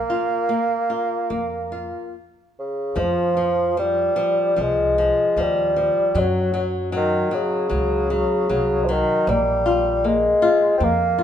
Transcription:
0.00 0.48 A#3 soft
0.00 2.14 A#3 medium
0.10 0.49 F4 soft
0.49 0.88 A#3 soft
0.90 1.29 F4 soft
1.30 1.85 F2 medium
1.30 1.70 A#3 soft
1.72 2.13 F4 soft
2.59 3.00 C#3 medium
2.96 4.01 F2 medium
2.96 3.36 F3 medium
2.96 3.78 F3 medium
3.37 3.76 F3 soft
3.77 4.15 F3 soft
3.77 4.63 G3 medium
4.16 4.55 F3 medium
4.56 5.09 C2 medium
4.56 4.96 F3 soft
4.61 5.43 G#3 medium
4.98 5.36 F3 soft
5.36 5.87 D#2 medium
5.36 5.75 F3 medium
5.41 6.20 G3 medium
5.76 6.14 F3 soft
6.15 7.16 F#2 medium
6.15 6.52 F#3 medium
6.15 6.69 F#3 medium
6.54 6.91 F#3 soft
6.92 7.36 D#3 medium
6.92 7.30 F#3 soft
7.31 8.86 C#3 medium
7.31 7.68 F#3 soft
7.70 8.22 C#2 medium
7.70 8.09 F#3 medium
8.10 8.48 F#3 soft
8.49 9.00 C2 medium
8.49 8.87 F#3 medium
8.84 8.92 F3 medium
8.89 9.30 D#3 medium
8.89 9.26 F#3 medium
9.27 10.27 A#1 loud
9.27 10.09 G3 medium
9.27 10.03 A#3 medium
9.66 10.03 F4 soft
10.04 10.75 G#3 loud
10.04 10.41 A#3 soft
10.42 10.79 F4 medium
10.77 11.23 F2 medium
10.77 11.18 A#3 medium
10.77 10.85 C4 medium
10.84 11.23 A#3 loud
11.18 11.23 F4 soft

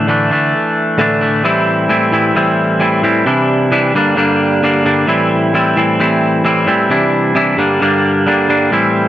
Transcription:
0.00 0.29 A2 loud
0.07 0.53 D3 medium
0.07 0.33 E3 medium
0.07 0.31 A3 medium
0.07 0.30 D4 medium
0.31 0.98 E3 medium
0.31 0.99 A3 medium
0.31 1.00 D4 medium
0.98 1.42 A2 loud
0.98 1.42 D3 loud
0.98 1.23 E3 loud
0.98 1.21 A3 loud
0.98 1.20 D4 loud
1.21 1.43 E3 medium
1.21 1.43 A3 medium
1.21 1.42 D4 medium
1.44 1.87 A2 medium
1.44 1.88 E3 loud
1.44 1.89 G3 loud
1.44 1.89 C4 loud
1.44 1.89 E4 loud
1.89 2.11 A2 medium
1.89 2.11 E3 medium
1.89 2.13 G3 medium
1.89 2.12 C4 medium
1.89 2.12 E4 loud
2.12 2.33 A2 medium
2.12 2.34 E3 loud
2.12 2.36 G3 medium
2.12 2.36 C4 medium
2.12 2.35 E4 medium
2.35 2.78 A2 loud
2.35 2.79 E3 loud
2.35 2.80 G3 loud
2.35 2.80 C4 loud
2.35 2.80 E4 loud
2.80 3.01 A2 medium
2.80 3.02 E3 medium
2.80 3.03 G3 medium
2.80 3.03 C4 medium
2.80 3.03 E4 medium
3.02 3.24 A2 medium
3.02 3.24 E3 medium
3.02 3.26 G3 medium
3.02 3.25 C4 loud
3.02 3.25 E4 medium
3.26 3.70 C3 loud
3.26 3.70 E3 loud
3.26 3.71 G3 medium
3.26 3.71 D4 loud
3.26 3.71 E4 medium
3.71 3.92 C3 medium
3.71 3.93 E3 medium
3.71 3.95 G3 medium
3.71 3.93 D4 medium
3.71 3.93 E4 loud
3.94 4.15 G2 loud
3.94 4.16 D3 medium
3.94 4.17 G3 loud
3.94 4.16 A#3 loud
3.94 4.17 D4 loud
4.16 4.62 G2 loud
4.16 4.62 D3 loud
4.16 4.63 G3 medium
4.16 4.63 A#3 loud
4.16 4.64 D4 medium
4.63 4.83 G2 medium
4.63 4.84 D3 medium
4.63 4.85 G3 medium
4.63 4.85 A#3 loud
4.63 4.85 D4 loud
4.84 5.06 G2 medium
4.84 5.06 D3 loud
4.84 5.08 G3 loud
4.84 5.07 A#3 loud
4.84 5.07 D4 loud
5.07 5.52 A2 medium
5.07 5.53 E3 loud
5.07 5.55 G3 loud
5.07 5.54 C4 medium
5.07 5.54 E4 loud
5.54 5.75 A2 medium
5.54 5.75 E3 medium
5.54 5.77 G3 medium
5.54 5.76 C4 loud
5.54 5.77 E4 medium
5.76 5.98 A2 medium
5.76 5.98 E3 medium
5.76 6.00 G3 medium
5.76 5.99 C4 medium
5.76 6.00 E4 loud
5.99 6.43 A2 medium
5.99 6.43 E3 medium
5.99 6.44 G3 loud
5.99 6.45 C4 loud
5.99 6.44 E4 loud
6.44 6.65 A2 medium
6.44 6.66 E3 medium
6.44 6.67 G3 medium
6.44 6.67 C4 loud
6.44 6.68 E4 loud
6.66 6.88 A2 loud
6.66 6.89 E3 medium
6.66 6.90 G3 loud
6.66 6.89 C4 loud
6.66 6.89 E4 loud
6.90 7.33 C3 loud
6.90 7.34 E3 loud
6.90 7.35 G3 medium
6.90 7.35 D4 loud
6.90 7.35 E4 loud
7.35 7.56 C3 loud
7.35 7.57 E3 loud
7.35 7.58 G3 medium
7.35 7.57 D4 loud
7.35 7.57 E4 loud
7.57 7.79 G2 loud
7.57 7.80 D3 medium
7.57 7.82 G3 loud
7.57 7.81 A#3 loud
7.57 7.81 D4 loud
7.80 8.25 G2 medium
7.80 8.25 D3 loud
7.80 8.27 G3 loud
7.80 8.26 A#3 loud
7.80 8.27 D4 loud
8.26 8.47 G2 medium
8.26 8.48 D3 loud
8.26 8.49 G3 medium
8.26 8.49 A#3 medium
8.26 8.49 D4 medium
8.48 8.70 G2 medium
8.48 8.70 D3 medium
8.48 8.72 G3 loud
8.48 8.71 A#3 loud
8.48 8.71 D4 loud
8.71 9.08 A2 medium
8.71 9.08 E3 medium
8.71 9.08 G3 loud
8.71 9.08 C4 loud
8.71 9.08 E4 loud

